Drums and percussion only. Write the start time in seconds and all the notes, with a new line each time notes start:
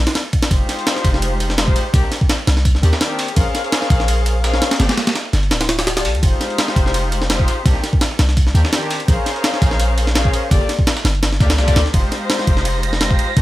0.07 snare, ride
0.15 snare, ride
0.33 kick, ride
0.42 snare, ride
0.51 kick, ride, tambourine
0.69 snare, ride, tambourine
0.79 closed hi-hat
0.87 snare, ride, tambourine
0.96 snare
1.05 kick, ride, tambourine
1.14 snare
1.22 ride, tambourine
1.40 ride, tambourine
1.50 snare
1.58 snare, ride, tambourine
1.68 kick
1.76 ride, tambourine
1.94 kick, ride, tambourine
2.04 snare
2.12 snare, ride, tambourine
2.21 kick
2.29 snare, ride, tambourine
2.39 snare
2.47 snare, ride, tambourine
2.57 snare, closed hi-hat
2.65 kick, ride, tambourine
2.75 snare
2.83 ride, tambourine
2.93 snare
3.01 snare, ride, tambourine
3.19 open hi-hat, ride
3.28 ride
3.36 kick, ride, tambourine
3.55 snare, ride, tambourine
3.64 closed hi-hat
3.72 snare, ride, tambourine
3.82 snare
3.90 kick, snare, ride, tambourine
4.00 snare
4.08 ride, tambourine
4.26 ride, tambourine
4.44 snare, ride, tambourine
4.54 snare
4.62 snare, ride, tambourine
4.71 snare, ride
4.80 snare, ride, tambourine
4.89 snare, ride
4.97 snare, ride, tambourine
5.07 snare, ride
5.15 snare, ride, tambourine
5.25 snare
5.33 snare, ride, tambourine
5.43 closed hi-hat
5.51 snare, ride, tambourine
5.61 snare, ride
5.69 snare, ride, tambourine
5.79 snare, ride
5.87 snare, ride, tambourine
5.97 snare, ride
6.05 open hi-hat, ride
6.15 ride
6.23 kick, ride, tambourine
6.41 snare, ride, tambourine
6.50 closed hi-hat
6.58 snare, ride, tambourine
6.68 snare
6.76 kick, ride, tambourine
6.86 snare
6.94 ride, tambourine
7.12 ride, tambourine
7.22 snare
7.30 snare, ride, tambourine
7.39 kick
7.48 ride, tambourine
7.66 kick, ride, tambourine
7.75 snare
7.83 snare, ride, tambourine
7.93 kick
8.01 snare, ride, tambourine
8.11 snare
8.19 snare, ride, tambourine
8.29 snare, closed hi-hat
8.37 kick, ride, tambourine
8.47 snare
8.55 ride, tambourine
8.65 snare
8.73 snare, ride, tambourine
8.90 open hi-hat, ride
9.00 ride
9.08 kick, ride, tambourine
9.26 snare, ride, tambourine
9.36 closed hi-hat
9.44 snare, ride, tambourine
9.54 snare
9.62 kick, snare, ride, tambourine
9.71 snare
9.80 ride, tambourine
9.98 ride, tambourine
10.07 snare
10.15 snare, ride, tambourine
10.25 kick
10.33 ride, tambourine
10.51 kick, ride, tambourine
10.61 snare
10.69 snare, ride
10.79 kick
10.87 snare, ride, tambourine
10.97 snare, tambourine
11.05 snare, ride, tambourine
11.15 closed hi-hat
11.23 snare, ride, tambourine
11.32 snare
11.40 kick, snare, ride, tambourine
11.50 snare, ride, tambourine
11.58 snare, tambourine
11.68 kick, snare, ride, tambourine
11.76 snare, ride, tambourine
11.86 snare
11.94 kick, ride
12.12 snare, ride
12.30 snare, ride
12.39 snare
12.47 kick, ride
12.57 snare
12.65 ride
12.83 ride
12.93 snare
13.01 snare, ride
13.11 kick
13.19 ride
13.37 kick, ride